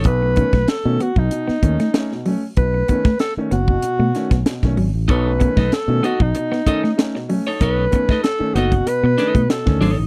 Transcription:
<<
  \new Staff \with { instrumentName = "Alto saxophone" } { \time 4/4 \key b \mixolydian \tempo 4 = 95 b'4 a'8 fis'16 dis'4.~ dis'16 r8 | b'4 a'8 fis'4. r4 | b'4 a'8 fis'16 dis'4.~ dis'16 r8 | b'4 a'8 fis'8 b'4 a'8. r16 | }
  \new Staff \with { instrumentName = "Clean electric guitar" } { \time 4/4 \key b \mixolydian r1 | r1 | <dis' a' cis''>16 r8 <dis' a' dis''>16 r8 <dis' a' dis''>16 r8. <dis' a' dis''>16 r4 <dis' a' cis''>16 | <dis' a' cis''>16 r8 <dis' a' dis''>16 r8 <dis' a' dis''>16 r8. <dis' a' dis''>16 r8. <dis' a' cis''>16 r16 | }
  \new Staff \with { instrumentName = "Clean electric guitar" } { \time 4/4 \key b \mixolydian r8 b16 a16 r8 b16 r8 b16 r16 a16 r8 fis16 r16 | r8 b16 a16 r8 b16 r8 a16 r16 b16 r8 fis16 r16 | r8 b16 a16 r8 b16 r8 b16 r16 a16 r8 fis16 r16 | r8 b16 a16 r8 b16 r8 b16 r16 a16 r8 fis16 r16 | }
  \new Staff \with { instrumentName = "Upright piano" } { \time 4/4 \key b \mixolydian b,16 <a cis'>16 <dis a cis'>16 r8 <dis a cis'>16 r16 b,16 b,16 r16 <dis a cis'>16 <a cis'>16 <a cis'>16 b,16 <a cis'>16 r16 | b,16 <a cis'>16 <dis a cis'>16 r8 <dis a cis'>16 r16 b,16 b,16 r16 <dis a cis'>16 <a cis'>16 b,16 <dis a cis'>16 <a cis'>16 r16 | b,16 <a cis'>16 <dis a cis'>16 r8 <dis a cis'>16 r16 b,16 b,16 r16 <dis a cis'>16 <a cis'>16 <a cis'>16 b,16 <a cis'>16 r16 | b,16 <a cis'>16 <dis a cis'>16 r8 <dis a cis'>16 r16 b,16 b,16 r16 <dis a cis'>16 <a cis'>16 b,16 <dis a cis'>16 <a cis'>16 r16 | }
  \new Staff \with { instrumentName = "Fingered electric bass" } { \clef bass \time 4/4 \key b \mixolydian b,,8. b,,16 r16 b,16 r16 b,,16 r8 dis,16 r4 r16 | b,,8 r4 fis,,8 r16 b,16 r16 b,,16 r16 b,,16 gis,,16 a,,16 | b,,8. b,,16 r16 b,16 r16 b,,16 r2 | b,,8 r4 fis,,8 r16 b,16 r16 b,16 r16 d,16 gis,,16 a,,16 | }
  \new DrumStaff \with { instrumentName = "Drums" } \drummode { \time 4/4 <hh bd>8 <hh bd>16 <bd sn>16 <hh sn>8 hh16 bd16 hh16 sn16 <hh bd>16 <hh sn>16 <hh sn>16 sn16 hho8 | <hh bd>8 <hh bd>16 <bd sn>16 <hh sn>8 hh16 bd16 hh8 <hh sn>16 <hh bd sn>16 <hh sn>16 <bd sn>16 hho8 | <hh bd>8 <hh bd>16 <bd sn>16 <hh sn>8 hh16 bd16 hh16 sn16 <hh bd>16 sn16 <hh sn>16 sn16 hho8 | <hh bd>8 <hh bd>16 <bd sn>16 <hh sn>8 hh16 <hh bd>16 hh8 <hh sn>16 <hh bd>16 <hh sn>16 <bd sn>16 hho8 | }
>>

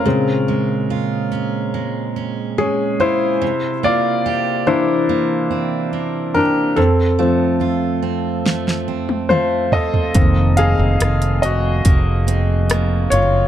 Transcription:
<<
  \new Staff \with { instrumentName = "Grand piano" } { \time 4/4 \key f \phrygian \tempo 4 = 71 <des' bes'>4. r4. <des' aes'>8 <e' c''>8~ | <e' c''>8 <f' d''>4 <e' c''>2 <d' bes'>8 | <c' a'>4 r2 <f' c''>8 <a' ees''>8~ | <a' ees''>8 <aes' f''>4 <ges' ees''>2 <f' des''>8 | }
  \new Staff \with { instrumentName = "Grand piano" } { \time 4/4 \key f \phrygian <des aes c'>4. r2 r8 | r4. <e bes d'>2~ <e bes d'>8 | r8 <f c'>2.~ <f c'>8 | <ees bes c'>8 r2. r8 | }
  \new Staff \with { instrumentName = "Steel-string acoustic guitar" } { \time 4/4 \key f \phrygian bes,8 aes8 f'8 des'8 aes8 des'8 aes8 f'8 | c8 bes8 g'8 c'8 bes8 c'8 bes8 g'8 | f,8 a8 f'8 c'8 a8 c'8 a8 f'8 | f,8 bes8 f'8 c'8 bes8 c'8 bes8 f'8 | }
  \new Staff \with { instrumentName = "Fretless electric bass" } { \clef bass \time 4/4 \key f \phrygian r1 | r1 | r1 | f,,8. f,,16 f,,4 f,,4. ges,,8 | }
  \new DrumStaff \with { instrumentName = "Drums" } \drummode { \time 4/4 r4 r4 r4 r4 | r4 r4 r4 r4 | r4 r4 sn16 sn8 tommh16 toml8 tomfh16 tomfh16 | <hh bd>8 hh8 <hh ss>16 hh16 hh8 <hh bd>8 hh8 <hh ss>8 hh8 | }
>>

